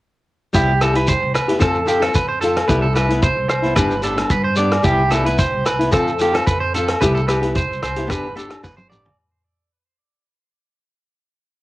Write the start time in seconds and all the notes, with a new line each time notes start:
0.53 C2 G3 B3 E4 G4, kick, closed hi-hat, shekere
0.81 G3 B3 E4 G4 A4, cross-stick, closed hi-hat, low agogo, shekere
0.93 E4 G4 B4, closed hi-hat
1.07 C5, kick, closed hi-hat, shekere
1.22 C2
1.34 E2 B4, cross-stick, closed hi-hat, low agogo, shekere
1.48 B3 E4 G4, closed hi-hat
1.59 F2 F3 C4 F4 A4, kick, cross-stick, closed hi-hat, low agogo, shekere
1.75 shekere
1.86 F3 C4 F4 G4 A4, closed hi-hat, shekere
2.00 C4 F4 A4, cross-stick, closed hi-hat, low agogo
2.14 F2 B4, kick, closed hi-hat, shekere
2.29 C5
2.41 F3 C4 F4 A4, closed hi-hat, shekere
2.57 cross-stick, closed hi-hat, low agogo
2.68 C2 G3 B3 E4 B4, kick, closed hi-hat, shekere
2.82 A4
2.93 G3 B3 E4 B4, cross-stick, closed hi-hat, shekere
2.97 low agogo
3.09 B3 E4, closed hi-hat
3.22 C5, kick, closed hi-hat, shekere
3.37 C2
3.49 C2 C5, cross-stick, closed hi-hat, low agogo, shekere
3.62 B3 E4, closed hi-hat
3.76 G1 G3 B3 D4 B4, kick, cross-stick, closed hi-hat, low agogo, shekere
3.91 shekere
4.02 G3 B3 D4 A4, closed hi-hat, shekere
4.16 B3 D4, cross-stick, closed hi-hat, low agogo
4.30 G2 B4, kick, closed hi-hat, shekere
4.44 C5
4.56 G3 B3 D4 D5, closed hi-hat, shekere
4.72 cross-stick, closed hi-hat, low agogo
4.82 C2 G3 B3 E4 G4, kick, closed hi-hat, shekere
5.10 G3 B3 E4 A4, cross-stick, closed hi-hat, low agogo, shekere
5.24 B3 E4 B4, closed hi-hat
5.39 C5, kick, closed hi-hat, shekere
5.53 C2
5.66 B4, cross-stick, closed hi-hat, low agogo, shekere
5.79 B3 E4, closed hi-hat
5.91 F2 F3 C4 F4 A4, kick, cross-stick, closed hi-hat, low agogo, shekere
6.08 shekere
6.19 F3 C4 F4 G4 A4, closed hi-hat, shekere
6.33 C4 F4 A4, cross-stick, closed hi-hat, low agogo
6.47 F2 B4, kick, closed hi-hat, shekere
6.60 C5
6.74 F3 C4 F4 A4, closed hi-hat, shekere
6.88 cross-stick, closed hi-hat, low agogo
7.01 C2 G3 B3 E4 G4 B4, kick, closed hi-hat, shekere
7.15 A4, shekere
7.27 G3 B3 E4 G4 B4, cross-stick, closed hi-hat, low agogo, shekere
7.42 B3 E4 G4, closed hi-hat
7.55 C5, kick, closed hi-hat, shekere
7.71 C2, shekere
7.82 C2 C5, cross-stick, closed hi-hat, low agogo, shekere
7.96 B3 E4 G4, closed hi-hat
8.07 G1 B3 D4 G4 B4, kick, cross-stick, closed hi-hat, low agogo
8.11 shekere
8.35 B3 D4 G4 A4, closed hi-hat, shekere
8.49 D4 G4, cross-stick, closed hi-hat, low agogo, shekere
8.63 G1 B4, kick, snare, shekere
8.77 C5, high tom, shekere
8.89 B3 D4 G4 D5, mid tom, shekere
9.05 floor tom, low agogo